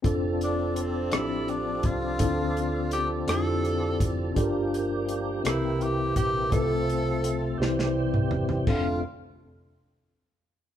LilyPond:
<<
  \new Staff \with { instrumentName = "Tenor saxophone" } { \time 6/8 \key f \major \tempo 4. = 56 r8 d'8 c'8 e'8 d'8 f'8~ | f'4 g'8 a'4 r8 | r4. e'8 g'8 g'8 | a'4. r4. |
f'8 r2 r8 | }
  \new Staff \with { instrumentName = "Tine electric piano" } { \time 6/8 \key f \major <c' d' f' a'>4 r8 <f c' d' g'>4 r8 | <c' d' e' f' a'>4 r8 <c' d' e' f' g'>4 r8 | <d' f' g' a' bes'>4 r8 <c' e' g' bes'>4 r8 | <c' f' a' b' c''>4 r8 <c' e' g' c''>4 r8 |
<c' d' f' a'>8 r2 r8 | }
  \new Staff \with { instrumentName = "Tine electric piano" } { \clef bass \time 6/8 \key f \major r2. | d4. r4. | g,4. c4. | c4. c4. |
f,8 r2 r8 | }
  \new Staff \with { instrumentName = "Tonewheel organ" } { \time 6/8 \key f \major << { <c' a'>2.~ | <c' a'>2. | <bes g'>2. | <a a'>4. <g g'>4. |
<d a c' f'>8 r2 r8 | } \\ { d'2.~ | d'2.~ | d'4. c'4. | c'2. |
r2. | } >> }
  \new Staff \with { instrumentName = "Tonewheel organ" } { \clef bass \time 6/8 \key f \major f2.~ | f2.~ | f4. e4. | f4. e4. |
r2. | }
  \new Staff \with { instrumentName = "Fingered electric bass" } { \clef bass \time 6/8 \key f \major f,,4. a,,4 c,8 | d,4. f,4 f,,8 | g,,4. c,4 bes,,8 | c,4. c,4 g,,8 |
f,,8 r2 r8 | }
  \new DrumStaff \with { instrumentName = "Drums" } \drummode { \time 6/8 <hh bd>8 hh8 hh8 <hh ss>8 hh8 <hh bd>8 | <hh bd>8 hh8 <hh ss>8 <hh ss>8 hh8 <hh bd>8 | <hh bd>8 hh8 hh8 <hh ss>8 hh8 <hh bd>8 | <hh bd>8 hh8 hh8 sn16 sn8 toml16 tomfh16 tomfh16 |
<cymc bd>4. r4. | }
>>